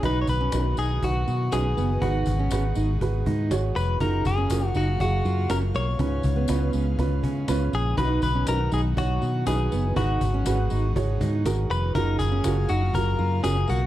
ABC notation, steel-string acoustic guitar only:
X:1
M:4/4
L:1/16
Q:1/4=121
K:F#
V:1 name="Steel-string acoustic guitar"
D2 z C2 z D z3 F2 C z B, z | D2 z C2 z D z3 D2 z4 | D2 z C2 z D z3 E2 C z A, z | C2 z B,2 z C z3 C2 z4 |
D2 z C2 z D z3 F2 C z B, z | D2 z C2 z D z3 D2 z4 | D2 z C2 z D z3 E2 C z A, z |]